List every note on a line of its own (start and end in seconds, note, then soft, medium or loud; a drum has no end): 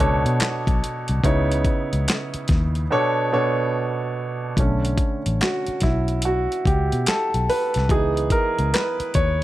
0.00 0.23 C#2 medium
0.00 1.17 B2 medium
0.00 1.17 B3 medium
0.00 1.18 D4 medium
0.00 1.18 A4 medium
0.00 1.18 C#5 medium
0.00 closed hi-hat medium
0.26 0.39 B2 medium
0.26 closed hi-hat medium
0.40 muted fingered electric bass stroke soft
0.40 snare medium
0.40 clap medium
0.40 closed hi-hat medium
0.67 0.81 B1 medium
0.67 kick loud
0.67 closed hi-hat soft
0.84 closed hi-hat medium
1.08 1.23 C2 medium
1.08 closed hi-hat soft
1.24 1.62 C#2 medium
1.24 2.82 C#3 medium
1.24 2.82 B3 medium
1.24 2.82 D#4 medium
1.24 2.82 E4 medium
1.24 2.82 C#5 medium
1.24 kick loud
1.24 closed hi-hat medium
1.52 closed hi-hat soft
1.65 kick medium
1.65 closed hi-hat medium
1.93 2.06 C#2 medium
1.93 closed hi-hat soft
2.08 snare loud
2.08 clap medium
2.08 closed hi-hat medium
2.34 muted fingered electric bass stroke soft
2.34 closed hi-hat soft
2.48 2.87 D#2 medium
2.48 kick medium
2.48 snare soft
2.48 closed hi-hat medium
2.75 closed hi-hat soft
2.90 3.30 B2 medium
2.90 3.30 B3 medium
2.90 3.30 D4 medium
2.90 3.30 A4 medium
2.90 3.31 C#5 loud
3.32 4.51 B2 medium
3.32 4.51 B3 medium
3.32 4.51 D4 medium
3.32 4.51 A4 medium
3.32 4.51 C#5 loud
4.57 4.95 B1 medium
4.57 5.17 D3 soft
4.57 5.18 A3 soft
4.57 5.18 C#4 medium
4.57 kick loud
4.57 closed hi-hat medium
4.85 closed hi-hat soft
4.98 kick medium
4.98 closed hi-hat medium
5.26 5.39 A1 medium
5.26 closed hi-hat soft
5.41 5.79 F#4 medium
5.41 snare loud
5.41 clap medium
5.41 closed hi-hat medium
5.67 muted fingered electric bass stroke soft
5.67 closed hi-hat soft
5.80 6.46 B1 medium
5.80 6.25 E4 medium
5.80 kick medium
5.80 snare soft
5.80 closed hi-hat medium
6.08 closed hi-hat soft
6.22 6.63 F#4 medium
6.22 closed hi-hat medium
6.52 closed hi-hat soft
6.65 6.90 C#2 medium
6.65 7.09 G4 medium
6.65 kick medium
6.65 closed hi-hat medium
6.92 7.06 B2 medium
6.92 closed hi-hat soft
7.06 7.50 A4 medium
7.06 muted fingered electric bass stroke soft
7.06 snare loud
7.06 clap medium
7.06 closed hi-hat medium
7.34 7.47 B1 medium
7.34 closed hi-hat soft
7.49 7.88 B4 medium
7.49 open hi-hat soft
7.74 7.90 C2 medium
7.74 snare soft
7.74 closed hi-hat soft
7.89 8.28 C#2 medium
7.89 8.50 E3 soft
7.89 8.50 B3 soft
7.89 8.51 D#4 medium
7.89 8.33 G#4 medium
7.89 kick loud
7.89 closed hi-hat medium
8.17 closed hi-hat soft
8.30 8.75 A#4 medium
8.30 kick medium
8.30 closed hi-hat medium
8.59 8.72 C#2 medium
8.59 closed hi-hat soft
8.74 9.17 B4 medium
8.74 snare loud
8.74 clap medium
8.74 closed hi-hat medium
9.00 muted fingered electric bass stroke soft
9.00 closed hi-hat soft
9.14 9.44 D#2 medium
9.14 9.44 C#5 medium
9.14 kick medium
9.14 closed hi-hat medium